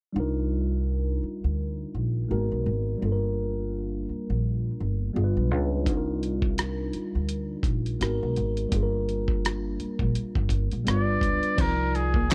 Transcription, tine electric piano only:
0.12 2.24 G3 medium
0.12 2.25 D4 medium
0.12 2.26 D#4 medium
0.18 2.27 F4 medium
0.18 2.28 A#4 medium
2.28 3.00 G#3 medium
2.28 2.37 A#3 soft
2.28 3.01 D#4 medium
2.28 3.02 F#4 soft
2.28 3.02 A#4 medium
2.36 3.04 B3 medium
2.98 5.10 G3 medium
2.98 5.10 A#3 medium
2.98 5.11 D4 medium
3.03 5.12 F4 medium
3.03 3.10 A4 soft
3.12 5.17 A#4 medium
5.13 5.82 G3 medium
5.13 5.86 B3 medium
5.13 5.84 D4 medium
5.13 5.87 F4 medium
5.13 5.24 G#4 medium
5.24 5.91 B4 medium
5.83 7.95 G3 medium
5.83 7.96 D4 medium
5.83 7.97 D#4 medium
5.88 7.98 F4 medium
5.88 5.96 G#4 medium
5.97 8.02 A#4 medium
8.00 8.72 G#3 medium
8.00 8.72 B3 medium
8.00 8.73 D#4 medium
8.00 8.73 F#4 medium
8.04 8.74 A#4 medium
8.69 10.81 G3 medium
8.69 10.82 A#3 medium
8.69 10.83 D4 medium
8.74 10.83 F4 medium
8.74 8.82 G#4 medium
8.83 10.88 A#4 medium
10.85 11.57 G3 medium
10.85 11.58 B3 medium
10.85 11.58 D4 medium
10.85 11.58 F4 medium
10.89 10.95 A#4 medium
10.95 11.62 B4 medium
11.56 12.35 F3 medium
11.56 12.35 D#4 soft
11.56 12.35 D5 medium
11.61 12.35 F4 medium
11.61 11.68 G#4 soft
11.69 12.35 A#4 medium

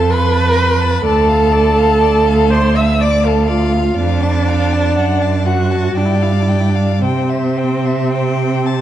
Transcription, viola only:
0.00 0.12 A4 medium
0.11 1.04 B4 medium
1.05 2.52 A4 medium
2.50 2.77 C5 medium
2.76 3.02 E5 medium
3.01 3.27 D5 medium
3.25 3.50 A4 medium
3.49 4.00 F4 medium
3.98 5.47 D4 medium
5.47 5.98 F#4 medium
5.97 6.07 D4 medium
6.05 6.16 E4 medium
6.15 6.24 D4 medium
6.22 6.34 E4 soft
6.32 6.43 D4 soft
6.41 6.53 E4 medium
6.51 6.62 D4 medium
6.60 6.71 E4 soft
6.69 7.04 D4 soft
7.05 8.81 C4 medium

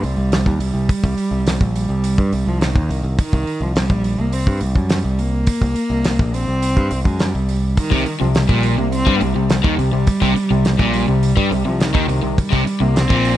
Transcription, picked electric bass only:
0.03 0.17 C2 medium
0.17 0.44 C2 medium
0.46 0.58 D#2 medium
0.59 0.73 C2 medium
0.74 0.87 C2 medium
1.04 1.16 C2 medium
1.31 1.58 C2 medium
1.61 1.87 A#1 medium
1.89 2.16 C2 medium
2.18 2.31 G2 medium
2.33 2.46 C2 medium
2.46 2.73 C2 medium
2.76 2.89 D#2 medium
2.89 3.03 C2 medium
3.03 3.17 C2 medium
3.33 3.46 C2 loud
3.61 3.88 C2 medium
3.90 4.17 A#1 medium
4.18 4.45 C2 medium
4.47 4.60 G2 loud
4.61 4.75 C2 medium
4.75 5.02 F#2 medium
5.04 5.45 C2 medium
5.62 5.75 C2 medium
5.90 6.17 C2 medium
6.19 6.46 A#1 medium
6.48 6.75 C2 medium
6.77 6.90 G2 medium
6.91 7.04 C2 medium
7.05 7.32 F#2 medium
7.35 7.75 C2 medium
7.92 8.05 C2 medium
8.21 8.48 C2 medium
8.49 8.76 A#1 medium
8.78 9.05 C2 medium
9.07 9.20 G2 medium
9.21 9.35 C2 medium
9.35 9.62 C2 medium
9.64 9.78 D#2 medium
9.78 9.92 C2 medium
9.93 10.07 C2 medium
10.22 10.35 C2 medium
10.51 10.78 C2 medium
10.79 11.06 A#1 medium
11.08 11.35 C2 medium
11.37 11.50 G2 medium
11.51 11.65 C2 medium
11.66 11.93 C2 medium
11.95 12.07 D#2 medium
12.08 12.22 C2 medium
12.23 12.37 C2 medium
12.53 12.65 C2 medium
12.80 13.08 C2 medium
13.10 13.37 A#1 medium

